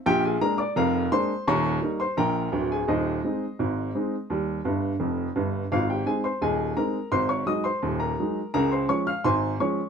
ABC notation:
X:1
M:2/4
L:1/16
Q:1/4=85
K:Ab
V:1 name="Upright piano"
[Gg] [Aa] [Bb] [=d=d'] [Bfb]2 [cc']2 | [dbd']3 [cc'] [Bgb]3 [Aa] | [Ece]8- | [Ece]4 z4 |
[Ff] [Gg] [Aa] [cc'] [Aea]2 [Bb]2 | [cc'] [dd'] [ee'] [cc']2 [Bb]3 | [Bb] [cc'] [dd'] [ff'] [cac']2 [dd']2 |]
V:2 name="Upright piano" clef=bass
[B,,,B,,]2 [A,B,=D]2 [F,,,F,,]2 [A,B,D]2 | [E,,,E,,]2 [G,B,E]2 [B,,,B,,]2 [=D,,,=D,,]2 | [E,,,E,,]2 [A,CE]2 [A,,,A,,]2 [A,CE]2 | [E,,G,]2 [G,,,G,,]2 [F,,,F,,]2 [G,,,G,,]2 |
[A,,,A,,]2 [A,CE]2 [E,,,E,,]2 [A,CE]2 | [A,,,A,,]2 [_G,A,E]2 [E,,,E,,]2 [G,A,E]2 | [D,,D,]2 [F,A,D]2 [A,,,A,,]2 [F,A,D]2 |]